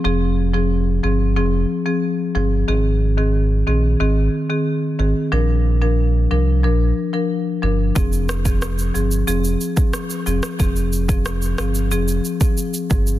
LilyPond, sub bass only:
\new Staff \with { instrumentName = "Sub bass" } { \clef bass \time 4/4 \key f \dorian \tempo 4 = 91 f,,4. g,,8 f,,8 r4 g,,8 | aes,,4. bes,,8 aes,,8 r4 aes,,16 r16 | bes,,4. c,8 bes,,8 r4 g,,8 | f,,4. g,,8 f,,8 r4 f,,16 r16 |
f,,4. g,,8 f,,8 r4 g,,8 | }